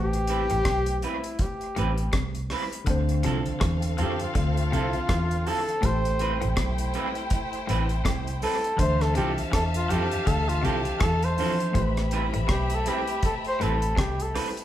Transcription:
Already playing: A1 A2 A3 G4 B4 C5
0.13 closed hi-hat
0.27 G3 C4 E4 B4, closed hi-hat
0.50 A1 A2, closed hi-hat
0.65 B1 B2, kick, cross-stick, closed hi-hat
0.86 closed hi-hat
0.99 G3 C4 G4, closed hi-hat
1.04 E4 B4
1.24 closed hi-hat
1.39 G4, kick, closed hi-hat
1.61 closed hi-hat
1.76 A1 A2 G3 C4 E4 B4, closed hi-hat
1.98 closed hi-hat
2.13 C2 C3, kick, cross-stick, closed hi-hat
2.35 closed hi-hat
2.50 G3 C4 E4 B4, cross-stick, open hi-hat
2.72 closed hi-hat
2.84 D2 D3 D4, kick, closed hi-hat
2.89 C4 A4 C5 F5
3.09 closed hi-hat
3.23 C2 C3 F3 C4 E4 A4, closed hi-hat
3.46 closed hi-hat
3.60 E2 E3, kick, cross-stick, closed hi-hat
3.82 closed hi-hat
3.98 F2 F3 C4 E4 G4 A4, closed hi-hat
4.19 F4, closed hi-hat
4.35 D2 D3 F4, kick, closed hi-hat
4.57 closed hi-hat
4.72 C2 C3 F3 C4 E4 A4, closed hi-hat
4.93 closed hi-hat
5.09 E2 E3, kick, cross-stick, closed hi-hat
5.31 closed hi-hat
5.46 F3 C4 E4 A4, open hi-hat
5.69 closed hi-hat
5.81 A1 A2 A3 E4 G4 C5 G5, kick, closed hi-hat
5.86 A4 C5
6.05 closed hi-hat
6.19 G3 C4 E4 B4, closed hi-hat
6.41 A1 A2, closed hi-hat
6.57 B1 B2, kick, cross-stick, closed hi-hat
6.78 closed hi-hat
6.94 G3 C4 E4 B4, closed hi-hat
7.15 closed hi-hat
7.30 kick, closed hi-hat
7.53 closed hi-hat
7.67 A1 A2 G3 C4 E4 B4, closed hi-hat
7.89 closed hi-hat
8.05 C2 C3, kick, cross-stick, closed hi-hat
8.27 closed hi-hat
8.42 G3 C4 E4 A4 B4, open hi-hat
8.64 closed hi-hat
8.77 D2 D3 E3 D4 C5 E5 F5 A5, kick, closed hi-hat
8.81 C5 E5
9.01 A4, cross-stick, closed hi-hat
9.15 C2 C3 F3 C4 E4 G4 A4, closed hi-hat
9.38 closed hi-hat
9.52 E2 E3 A4, kick, cross-stick, closed hi-hat
9.74 F4, closed hi-hat
9.89 F2 F3 C4 E4 G4 A4, closed hi-hat
10.11 closed hi-hat
10.26 D2 D3 A4, kick, closed hi-hat
10.49 F4, closed hi-hat
10.63 C2 C3 F3 C4 E4 G4 A4, closed hi-hat
10.85 closed hi-hat
11.00 E2 E3 A4, kick, cross-stick, closed hi-hat
11.22 C5, closed hi-hat
11.37 E3 F3 C4 D4 E4 A4 C5, open hi-hat
11.60 closed hi-hat
11.72 A1 A2 A3 G4 C5 E5 B5, kick, closed hi-hat
11.76 G4 B4
11.97 cross-stick, closed hi-hat
12.11 G3 C4 E4 B4, closed hi-hat
12.34 A1 A2, closed hi-hat
12.48 B1 B2 G4, kick, cross-stick, closed hi-hat
12.70 closed hi-hat
12.75 A4
12.86 G3 C4 E4 G4 B4, closed hi-hat
13.07 closed hi-hat
13.23 A4, kick, closed hi-hat
13.45 C5, closed hi-hat
13.60 A1 A2 G3 C4 E4 A4 B4, closed hi-hat
13.82 closed hi-hat
13.96 C2 C3 G4, kick, cross-stick, closed hi-hat
14.20 A4, closed hi-hat
14.34 G3 C4 E4 B4, cross-stick, open hi-hat
14.57 closed hi-hat

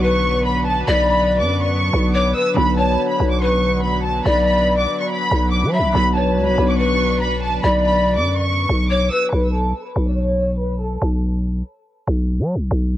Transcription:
Already playing: B1 D3 F#3 B3 D4 F#4 B4
0.03 B4 C#6
0.45 B5
0.67 A5
0.88 B1 D5 B5
1.09 B5
1.41 F#2 D6
1.62 C#6
1.93 B1
2.14 C#5 D6
2.36 B4 E6
2.54 B1 D3 F#3 B3 F#4 B5
2.59 B4
2.78 C#5 A5
3.09 B5
3.20 B1
3.31 D6
3.41 B4 C#6
3.83 B5
4.04 A5
4.26 B1 D5 B5
4.47 B5
4.79 D6
5.00 C#6
5.10 B5
5.31 B1
5.52 D6
5.63 F#3
5.73 E5 B5
5.79 B1
5.92 B1 D3 F#3 B3 D4 F#4 B4 B5
5.97 B4
6.16 C#5 A5
6.37 C#2
6.47 B1 B5
6.58 B1
6.68 D6
6.79 B4 C#6
7.21 B5
7.43 A5
7.64 B1 D5 B5
7.85 B5
8.16 F#2 D6
8.38 C#6
8.69 B1
8.90 C#5 D6
9.12 B4 E6
9.33 B1 B4
9.54 A4
9.85 B4
9.96 B1
10.07 D5
10.17 C#5
10.59 B4
10.80 A4
11.02 B1
12.07 B1
12.39 F#3
12.55 B1
12.71 B1

